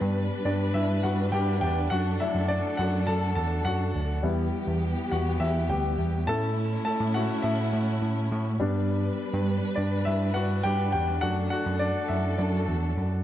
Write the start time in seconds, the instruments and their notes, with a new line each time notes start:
Already playing: grand piano G3 B3 D4, string section G3 D4 B4
0.02 tine electric piano G2
0.45 tine electric piano G2, grand piano D4 D5
0.74 tine electric piano G2, grand piano E4 E5
1.03 tine electric piano G2, grand piano F#4 F#5
1.32 tine electric piano G2, grand piano G4 G5
1.61 tine electric piano E2, grand piano G4 G5
1.90 tine electric piano F#2, string section F#3 A4, grand piano F#4 F#5
2.20 grand piano F#3 A3 D4 E4 E5
2.35 tine electric piano F#2
2.48 grand piano D4 D5
2.77 tine electric piano F#2, grand piano F#4 F#5
3.07 tine electric piano F#2, grand piano A4 A5
3.35 tine electric piano E2, grand piano A4 A5
3.65 tine electric piano F#2, grand piano F#4 F#5
3.95 tine electric piano D2
4.23 tine electric piano E2, string section E3 B3 G4, grand piano G3 B3 E4
4.67 tine electric piano E2
5.11 tine electric piano E2, grand piano F#4 F#5
5.40 tine electric piano E2, grand piano E4 E5
5.69 tine electric piano D2, grand piano G3 B3 E4 G4 G5
5.98 tine electric piano E2
6.27 tine electric piano A2, grand piano A3 C#4 E4 A4 A5, string section A3 C#4 E4
6.85 grand piano A4 A5
7.00 tine electric piano A2
7.14 grand piano A3 C#4 E4 F#4 F#5
7.42 tine electric piano A2, grand piano E4 E5
7.73 tine electric piano A2
8.02 tine electric piano A2
8.32 tine electric piano A2
8.60 tine electric piano G2, grand piano G3 B3 D4, string section G3 D4 B4
9.33 tine electric piano G2
9.76 tine electric piano G2, grand piano D4 D5
10.05 tine electric piano G2, grand piano E4 E5
10.34 tine electric piano G2, grand piano F#4 F#5
10.63 tine electric piano G2, grand piano G4 G5
10.92 tine electric piano E2, grand piano G4 G5
11.21 tine electric piano F#2, grand piano F#3 A3 D4 F#4 F#5, string section F#3 A4
11.50 grand piano F#4 F#5
11.66 tine electric piano F#2
11.79 grand piano D4 D5
12.08 tine electric piano F#2, grand piano E4 E5
12.38 tine electric piano F#2, grand piano D4 D5
12.68 tine electric piano E2
12.97 tine electric piano F#2